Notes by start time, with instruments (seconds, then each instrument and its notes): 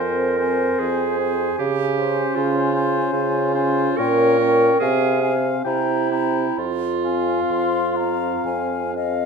Already playing: french horn C4, clarinet A#4, oboe C5, flute G#5
0.00 bassoon F2
0.39 french horn C4, oboe C5, flute G#5
0.79 bassoon F2, clarinet G#4
1.20 french horn C4, oboe C5, flute G#5
1.58 bassoon C#3, clarinet G4
1.97 french horn C#4, oboe C5, flute G#5
2.36 bassoon C#3, clarinet F4
2.74 french horn C#4, oboe C5, flute G#5
3.13 bassoon C#3, clarinet F4
3.55 french horn C#4, oboe C5, flute G#5
3.98 bassoon A#2, french horn C#4, clarinet A#4, oboe C#5, flute G5
4.39 french horn C#4, oboe C#5, flute G5
4.80 bassoon C3, french horn C4, clarinet G#4, oboe F5, flute G#5
5.21 french horn C4, oboe F5, flute G#5
5.64 bassoon C3, french horn C4, clarinet E4, oboe G5, flute A#5
6.11 french horn C4, oboe G5, flute A#5
6.58 bassoon F2, clarinet F4
7.04 french horn C4, oboe F5, flute G#5
7.49 bassoon F2, flute C6
7.96 french horn C4, oboe F5, flute A#5
8.45 bassoon F2, flute G#5
8.95 french horn C4, flute D#5, oboe F5